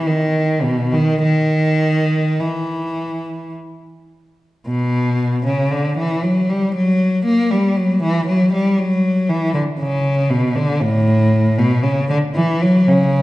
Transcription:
0.07 0.64 D#3 medium
0.63 0.93 B2 medium
0.92 1.21 D#3 medium
1.22 2.37 D#3 medium
2.40 3.54 E3 medium
4.67 5.42 B2 medium
5.46 5.72 C#3 medium
5.71 5.98 D3 medium
5.98 6.23 E3 medium
6.23 6.49 F#3 medium
6.49 6.75 G3 medium
6.75 7.25 F#3 medium
7.25 7.50 A#3 medium
7.51 7.77 G3 medium
7.76 8.02 F#3 medium
8.02 8.27 E3 medium
8.27 8.52 F#3 medium
8.53 8.78 G3 medium
8.78 9.30 F#3 medium
9.29 9.55 E3 medium
9.54 9.62 D3 medium
9.79 10.29 C#3 medium
10.30 10.56 B2 medium
10.56 10.82 D3 medium
10.81 11.58 A2 medium
11.58 11.84 B2 medium
11.83 12.09 C#3 medium
12.09 12.17 D3 medium
12.35 12.60 E3 medium
12.62 12.87 F#3 medium
12.88 13.22 C#3 medium

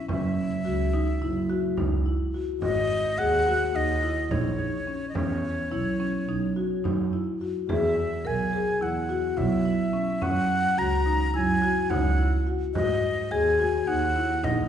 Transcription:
0.09 0.51 F#1 medium
0.09 0.58 C#4 medium
0.09 1.75 E5 medium
0.09 frame drum medium
0.65 1.07 C#2 medium
0.65 0.90 F#4 medium
0.93 1.18 D#4 medium
0.93 frame drum soft
1.22 1.64 F#1 medium
1.22 1.46 E4 medium
1.50 1.74 F#4 medium
1.50 frame drum soft
1.77 1.99 C#2 medium
1.77 2.02 D#4 medium
1.77 frame drum medium
2.06 2.31 E4 medium
2.34 2.59 F#4 medium
2.61 3.04 G#1 medium
2.61 3.12 F#4 medium
2.61 3.20 D#5 loud
2.61 frame drum medium
3.17 3.60 D#2 medium
3.17 3.43 G#4 medium
3.17 3.77 F#5 loud
3.47 3.72 F#4 medium
3.47 frame drum soft
3.73 4.16 D#2 medium
3.73 3.99 D#4 medium
3.73 4.33 D#5 medium
4.03 4.28 E4 medium
4.03 frame drum soft
4.30 4.52 A#1 medium
4.30 4.56 D#4 medium
4.30 5.09 C#5 medium
4.30 frame drum medium
4.59 4.84 D#4 medium
4.87 5.12 C#4 medium
5.09 5.16 D#5 soft
5.15 5.57 E2 medium
5.15 5.65 C#4 medium
5.15 6.84 C#5 medium
5.15 frame drum medium
5.71 6.14 B1 medium
5.71 5.96 E4 medium
5.71 frame drum soft
6.00 6.25 C#4 medium
6.28 6.70 B1 medium
6.28 6.53 D#4 medium
6.28 frame drum soft
6.56 6.81 F#4 medium
6.83 7.05 F#2 medium
6.83 7.09 D#4 medium
6.83 frame drum medium
7.13 7.37 E4 medium
7.41 7.66 F#4 medium
7.68 8.11 E2 medium
7.68 8.18 G#4 medium
7.68 8.28 E5 medium
7.68 frame drum medium
8.25 8.67 B1 medium
8.25 8.50 A#4 medium
8.25 8.84 G#5 medium
8.53 8.78 G#4 medium
8.53 frame drum soft
8.81 9.23 E2 medium
8.81 9.06 E4 medium
8.81 9.39 F#5 medium
9.09 9.34 F#4 medium
9.09 frame drum soft
9.37 9.59 B1 loud
9.37 9.62 E4 medium
9.37 10.24 E5 medium
9.37 frame drum soft
9.65 9.90 E4 medium
9.93 10.18 C#4 medium
10.22 10.64 F#2 medium
10.22 10.71 C#4 medium
10.22 10.80 F#5 loud
10.22 frame drum medium
10.78 11.20 C#2 medium
10.78 11.02 F#4 medium
10.78 11.34 A#5 medium
11.06 11.31 D#4 medium
11.06 frame drum soft
11.34 11.76 F#2 medium
11.34 11.59 E4 medium
11.34 11.91 G#5 medium
11.62 11.87 F#4 medium
11.90 12.12 C#2 medium
11.90 12.15 D#4 medium
11.90 12.47 F#5 medium
11.90 frame drum medium
12.18 12.43 E4 medium
12.47 12.71 F#4 medium
12.75 13.17 G#2 medium
12.75 13.24 F#4 medium
12.75 13.33 D#5 loud
12.75 frame drum medium
13.30 13.73 D#2 medium
13.30 13.56 G#4 medium
13.30 13.89 G#5 medium
13.59 13.84 F#4 medium
13.59 frame drum medium
13.87 14.29 D#2 medium
13.87 14.12 D#4 medium
13.87 14.46 F#5 medium
14.16 14.40 E4 medium
14.16 frame drum soft
14.44 14.65 A#1 medium
14.44 14.68 D#4 medium
14.44 14.68 D#5 medium
14.44 frame drum medium

